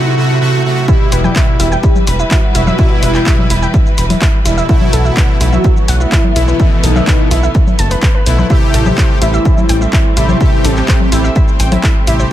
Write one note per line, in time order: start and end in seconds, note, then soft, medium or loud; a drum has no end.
0.00 0.15 C3 loud
0.00 0.15 A3 medium
0.00 0.15 F#4 loud
0.17 0.39 C3 loud
0.17 0.39 A3 loud
0.17 0.39 F#4 loud
0.41 0.63 C3 loud
0.41 0.63 A3 loud
0.41 0.63 F#4 loud
0.64 0.86 C3 loud
0.64 0.86 A3 loud
0.64 0.86 F#4 loud
0.88 1.57 B2 loud
0.88 8.46 E3 medium
0.88 4.65 G3 medium
0.88 1.57 G3 medium
0.88 4.65 E4 medium
0.88 1.57 E4 loud
0.88 0.97 E4 loud
0.88 1.50 G4 loud
0.88 4.65 B4 medium
0.88 0.97 E5 medium
0.88 kick loud
0.88 shaker soft
1.12 1.29 E1 loud
1.12 1.21 B4 medium
1.12 1.21 B5 medium
1.12 open hi-hat loud
1.12 shaker medium
1.24 1.32 G5 medium
1.24 1.32 G6 medium
1.24 low conga medium
1.24 shaker soft
1.36 1.47 E5 medium
1.36 1.47 E6 medium
1.36 kick loud
1.36 clap loud
1.36 shaker soft
1.60 1.77 E1 medium
1.60 1.76 B2 medium
1.60 1.76 G3 medium
1.60 1.76 E4 medium
1.60 1.68 E4 loud
1.60 2.22 G4 loud
1.60 1.68 E5 medium
1.60 open hi-hat loud
1.60 shaker medium
1.72 1.80 G5 medium
1.72 1.80 G6 medium
1.72 shaker soft
1.83 1.95 E4 medium
1.83 1.95 E5 medium
1.83 kick loud
1.83 shaker soft
1.96 low conga medium
1.96 shaker soft
2.07 2.24 E1 medium
2.07 2.12 B5 medium
2.07 open hi-hat loud
2.07 shaker medium
2.19 2.30 E4 medium
2.19 2.30 E5 medium
2.19 shaker soft
2.31 2.36 E4 loud
2.31 3.04 F#4 loud
2.31 2.36 E5 medium
2.31 kick loud
2.31 clap loud
2.31 shaker soft
2.55 2.72 E1 medium
2.55 2.76 B2 medium
2.55 2.76 G3 medium
2.55 2.76 E4 medium
2.55 2.63 E4 loud
2.55 2.63 E5 medium
2.55 open hi-hat loud
2.55 shaker medium
2.67 2.75 E5 medium
2.67 2.75 E6 medium
2.67 low conga medium
2.67 shaker soft
2.79 3.47 B2 loud
2.79 3.47 G3 medium
2.79 3.47 E4 loud
2.79 2.87 E4 loud
2.79 2.87 E5 medium
2.79 kick loud
2.79 shaker soft
3.03 3.20 E1 loud
3.03 3.65 E4 loud
3.03 3.11 B4 medium
3.03 3.11 B5 medium
3.03 open hi-hat loud
3.03 shaker medium
3.15 3.23 G5 medium
3.15 3.23 G6 medium
3.15 clap soft
3.15 shaker soft
3.26 3.38 E5 medium
3.26 3.38 E6 medium
3.26 kick loud
3.26 clap loud
3.26 shaker soft
3.39 low conga medium
3.50 3.67 E1 medium
3.50 3.67 B2 medium
3.50 3.67 G3 medium
3.50 3.67 E4 medium
3.50 3.59 E4 loud
3.50 3.59 E5 medium
3.50 open hi-hat loud
3.50 shaker medium
3.62 3.70 G5 medium
3.62 3.70 G6 medium
3.62 shaker soft
3.74 3.86 E4 medium
3.74 3.86 E5 medium
3.74 kick loud
3.74 shaker soft
3.86 shaker soft
3.98 4.15 E1 medium
3.98 4.03 B5 medium
3.98 open hi-hat loud
3.98 shaker medium
4.10 4.20 E4 medium
4.10 4.20 E5 medium
4.10 open hi-hat medium
4.10 low conga medium
4.10 shaker soft
4.22 4.27 E4 loud
4.22 4.27 E5 medium
4.22 kick loud
4.22 clap loud
4.22 shaker soft
4.45 4.62 E1 medium
4.45 4.66 B2 medium
4.45 4.66 G3 medium
4.45 4.54 E4 loud
4.45 4.66 E4 medium
4.45 4.54 E5 medium
4.45 open hi-hat loud
4.45 shaker medium
4.58 4.66 E5 medium
4.58 4.66 E6 medium
4.58 shaker soft
4.69 5.38 B2 loud
4.69 12.32 A3 medium
4.69 5.38 A3 medium
4.69 8.46 B3 medium
4.69 4.78 E4 loud
4.69 5.38 E4 loud
4.69 5.31 F#4 loud
4.69 4.78 E5 medium
4.69 kick loud
4.69 shaker soft
4.81 low conga medium
4.93 5.10 B1 loud
4.93 5.02 A4 medium
4.93 5.02 A5 medium
4.93 open hi-hat loud
4.93 shaker medium
5.05 5.13 E5 medium
5.05 5.13 E6 medium
5.05 shaker soft
5.17 5.28 B4 medium
5.17 5.28 B5 medium
5.17 kick loud
5.17 clap loud
5.17 shaker soft
5.41 5.58 B1 medium
5.41 5.57 B2 medium
5.41 5.57 A3 medium
5.41 5.49 E4 loud
5.41 5.57 E4 medium
5.41 6.13 F#4 loud
5.41 5.49 E5 medium
5.41 open hi-hat loud
5.41 shaker medium
5.53 5.61 E5 medium
5.53 5.61 E6 medium
5.53 low conga medium
5.53 shaker soft
5.64 5.76 E4 medium
5.64 5.76 E5 medium
5.64 kick loud
5.64 shaker soft
5.77 shaker soft
5.88 6.05 B1 medium
5.88 5.93 F#5 medium
5.88 5.93 F#6 medium
5.88 open hi-hat loud
5.88 shaker medium
6.00 6.11 E4 medium
6.00 6.11 E5 medium
6.00 shaker soft
6.12 6.74 E4 loud
6.12 6.17 E4 loud
6.12 6.17 E5 medium
6.12 kick loud
6.12 clap loud
6.12 shaker soft
6.24 low conga loud
6.36 6.53 B1 medium
6.36 6.57 B2 medium
6.36 6.57 A3 medium
6.36 6.44 E4 loud
6.36 6.57 E4 medium
6.36 6.44 E5 medium
6.36 open hi-hat loud
6.36 shaker medium
6.48 6.56 B4 medium
6.48 6.56 B5 medium
6.48 shaker soft
6.60 7.28 B2 loud
6.60 7.28 E3 loud
6.60 7.28 A3 medium
6.60 6.68 E4 loud
6.60 6.68 E5 medium
6.60 kick loud
6.60 shaker soft
6.83 7.01 B1 loud
6.83 7.46 D#4 loud
6.83 6.92 A4 medium
6.83 6.92 A5 medium
6.83 open hi-hat loud
6.83 shaker medium
6.96 7.04 E5 medium
6.96 7.04 E6 medium
6.96 clap soft
6.96 low conga medium
6.96 shaker soft
7.07 7.19 B4 medium
7.07 7.19 B5 medium
7.07 kick loud
7.07 clap loud
7.07 shaker soft
7.31 7.48 B1 medium
7.31 7.48 B2 medium
7.31 7.48 A3 medium
7.31 7.48 E4 medium
7.31 7.40 E4 loud
7.31 7.40 E5 medium
7.31 open hi-hat loud
7.31 shaker medium
7.43 7.51 E5 medium
7.43 7.51 E6 soft
7.43 shaker soft
7.55 7.67 E4 medium
7.55 7.67 E5 medium
7.55 kick loud
7.55 shaker soft
7.67 low conga medium
7.67 shaker soft
7.79 7.96 F#1 medium
7.79 7.90 A5 medium
7.79 7.90 A6 medium
7.79 open hi-hat loud
7.79 shaker medium
7.91 7.99 B4 medium
7.91 7.99 B5 medium
7.91 open hi-hat medium
7.91 shaker soft
8.02 8.08 B4 medium
8.02 8.08 B5 medium
8.02 kick loud
8.02 clap loud
8.02 shaker soft
8.15 8.23 B4 loud
8.15 8.23 B5 medium
8.26 8.43 B1 medium
8.26 8.47 B2 medium
8.26 8.47 A3 medium
8.26 8.47 E4 medium
8.26 8.31 B4 medium
8.26 8.31 B5 medium
8.26 open hi-hat loud
8.26 shaker medium
8.39 8.50 B4 medium
8.39 8.50 B5 medium
8.39 low conga loud
8.39 shaker soft
8.50 9.19 C3 loud
8.50 12.27 G3 medium
8.50 9.19 A3 medium
8.50 12.32 C4 medium
8.50 8.59 E4 loud
8.50 9.12 E4 loud
8.50 9.19 G4 loud
8.50 8.59 E5 medium
8.50 kick loud
8.50 shaker soft
8.74 8.91 A1 loud
8.74 8.82 A4 medium
8.74 8.82 A5 medium
8.74 open hi-hat loud
8.74 shaker medium
8.86 8.94 G4 medium
8.86 8.94 G5 medium
8.86 low conga medium
8.86 shaker soft
8.98 9.09 C5 medium
8.98 9.09 C6 medium
8.98 kick loud
8.98 clap loud
8.98 shaker soft
9.22 9.39 A1 medium
9.22 9.38 C3 medium
9.22 9.38 A3 medium
9.22 9.30 E4 loud
9.22 9.84 E4 loud
9.22 9.38 G4 medium
9.22 9.30 E5 medium
9.22 open hi-hat loud
9.22 shaker medium
9.34 9.42 E5 medium
9.34 9.42 E6 medium
9.34 shaker soft
9.45 9.57 E4 medium
9.45 9.57 E5 medium
9.45 kick loud
9.45 shaker soft
9.58 low conga medium
9.58 shaker soft
9.69 9.86 A1 medium
9.69 9.74 G5 medium
9.69 9.74 G6 medium
9.69 open hi-hat loud
9.69 shaker medium
9.81 9.92 E4 medium
9.81 9.92 E5 medium
9.81 shaker soft
9.93 9.98 E4 loud
9.93 10.66 E4 loud
9.93 9.98 E5 medium
9.93 kick loud
9.93 clap loud
9.93 shaker soft
10.17 10.34 A1 medium
10.17 10.38 C3 medium
10.17 10.38 A3 medium
10.17 10.25 E4 loud
10.17 10.38 G4 medium
10.17 10.25 E5 medium
10.17 open hi-hat loud
10.17 shaker medium
10.29 10.37 C5 medium
10.29 10.37 C6 medium
10.29 low conga loud
10.29 shaker soft
10.41 11.09 C3 loud
10.41 11.09 A3 medium
10.41 10.49 E4 loud
10.41 11.09 G4 loud
10.41 10.49 E5 medium
10.41 kick loud
10.41 shaker soft
10.64 10.81 A1 loud
10.64 11.27 C4 loud
10.64 10.73 A4 medium
10.64 10.73 A5 medium
10.64 open hi-hat loud
10.64 shaker medium
10.77 10.85 G4 medium
10.77 10.85 G5 medium
10.77 clap soft
10.77 shaker soft
10.88 11.00 C5 medium
10.88 11.00 C6 medium
10.88 kick loud
10.88 clap loud
10.88 shaker soft
11.00 low conga loud
11.12 11.29 A1 medium
11.12 11.29 C3 medium
11.12 11.29 A3 medium
11.12 11.21 E4 loud
11.12 11.29 G4 medium
11.12 11.21 E5 medium
11.12 open hi-hat loud
11.12 shaker medium
11.24 11.32 E5 medium
11.24 11.32 E6 medium
11.24 shaker soft
11.36 11.47 E4 medium
11.36 11.47 E5 medium
11.36 kick loud
11.36 shaker soft
11.48 shaker soft
11.60 11.77 A1 medium
11.60 11.65 G5 medium
11.60 11.65 G6 medium
11.60 open hi-hat loud
11.60 shaker medium
11.72 11.82 E4 medium
11.72 11.82 E5 medium
11.72 open hi-hat medium
11.72 low conga loud
11.72 shaker soft
11.83 11.89 E4 loud
11.83 11.89 E5 medium
11.83 kick loud
11.83 clap loud
11.83 shaker soft
12.07 12.24 A1 medium
12.07 12.28 C3 medium
12.07 12.28 A3 medium
12.07 12.16 E4 loud
12.07 12.28 G4 medium
12.07 12.16 E5 medium
12.07 open hi-hat loud
12.07 shaker medium
12.20 12.28 C5 medium
12.20 12.28 C6 medium
12.20 shaker soft